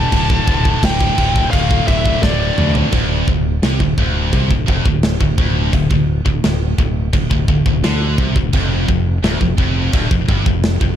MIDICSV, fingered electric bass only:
0, 0, Header, 1, 2, 480
1, 0, Start_track
1, 0, Key_signature, -1, "minor"
1, 0, Tempo, 700935
1, 87, Time_signature, 4, 2, 24, 8
1, 7505, End_track
2, 0, Start_track
2, 0, Title_t, "Fingered electric bass"
2, 0, Program_c, 0, 33
2, 85, Note_on_c, 0, 26, 103
2, 272, Note_off_c, 0, 26, 0
2, 324, Note_on_c, 0, 26, 93
2, 512, Note_off_c, 0, 26, 0
2, 566, Note_on_c, 0, 26, 95
2, 753, Note_off_c, 0, 26, 0
2, 811, Note_on_c, 0, 26, 93
2, 996, Note_off_c, 0, 26, 0
2, 1048, Note_on_c, 0, 26, 89
2, 1235, Note_off_c, 0, 26, 0
2, 1289, Note_on_c, 0, 26, 95
2, 1475, Note_off_c, 0, 26, 0
2, 1527, Note_on_c, 0, 26, 97
2, 1714, Note_off_c, 0, 26, 0
2, 1776, Note_on_c, 0, 38, 86
2, 1960, Note_off_c, 0, 38, 0
2, 2007, Note_on_c, 0, 26, 92
2, 2232, Note_off_c, 0, 26, 0
2, 2242, Note_on_c, 0, 26, 80
2, 2469, Note_off_c, 0, 26, 0
2, 2481, Note_on_c, 0, 36, 102
2, 2597, Note_off_c, 0, 36, 0
2, 2602, Note_on_c, 0, 26, 86
2, 2718, Note_off_c, 0, 26, 0
2, 2725, Note_on_c, 0, 26, 88
2, 2951, Note_off_c, 0, 26, 0
2, 2965, Note_on_c, 0, 36, 89
2, 3079, Note_off_c, 0, 36, 0
2, 3089, Note_on_c, 0, 26, 63
2, 3201, Note_off_c, 0, 26, 0
2, 3209, Note_on_c, 0, 29, 106
2, 3320, Note_off_c, 0, 29, 0
2, 3324, Note_on_c, 0, 26, 82
2, 3550, Note_off_c, 0, 26, 0
2, 3566, Note_on_c, 0, 26, 78
2, 3678, Note_off_c, 0, 26, 0
2, 3682, Note_on_c, 0, 26, 88
2, 3910, Note_off_c, 0, 26, 0
2, 3924, Note_on_c, 0, 26, 85
2, 4039, Note_off_c, 0, 26, 0
2, 4046, Note_on_c, 0, 26, 86
2, 4272, Note_off_c, 0, 26, 0
2, 4285, Note_on_c, 0, 26, 79
2, 4400, Note_off_c, 0, 26, 0
2, 4408, Note_on_c, 0, 26, 86
2, 4633, Note_off_c, 0, 26, 0
2, 4643, Note_on_c, 0, 26, 90
2, 4870, Note_off_c, 0, 26, 0
2, 4884, Note_on_c, 0, 26, 72
2, 4999, Note_off_c, 0, 26, 0
2, 5009, Note_on_c, 0, 26, 65
2, 5118, Note_off_c, 0, 26, 0
2, 5122, Note_on_c, 0, 26, 88
2, 5237, Note_off_c, 0, 26, 0
2, 5244, Note_on_c, 0, 26, 82
2, 5356, Note_off_c, 0, 26, 0
2, 5360, Note_on_c, 0, 38, 102
2, 5588, Note_off_c, 0, 38, 0
2, 5602, Note_on_c, 0, 36, 100
2, 5717, Note_off_c, 0, 36, 0
2, 5722, Note_on_c, 0, 26, 91
2, 5837, Note_off_c, 0, 26, 0
2, 5843, Note_on_c, 0, 29, 94
2, 6069, Note_off_c, 0, 29, 0
2, 6086, Note_on_c, 0, 29, 85
2, 6310, Note_off_c, 0, 29, 0
2, 6323, Note_on_c, 0, 26, 106
2, 6437, Note_off_c, 0, 26, 0
2, 6445, Note_on_c, 0, 29, 82
2, 6556, Note_off_c, 0, 29, 0
2, 6560, Note_on_c, 0, 29, 105
2, 6787, Note_off_c, 0, 29, 0
2, 6802, Note_on_c, 0, 26, 93
2, 6916, Note_off_c, 0, 26, 0
2, 6923, Note_on_c, 0, 29, 76
2, 7036, Note_off_c, 0, 29, 0
2, 7042, Note_on_c, 0, 31, 109
2, 7156, Note_off_c, 0, 31, 0
2, 7163, Note_on_c, 0, 29, 83
2, 7388, Note_off_c, 0, 29, 0
2, 7403, Note_on_c, 0, 29, 82
2, 7505, Note_off_c, 0, 29, 0
2, 7505, End_track
0, 0, End_of_file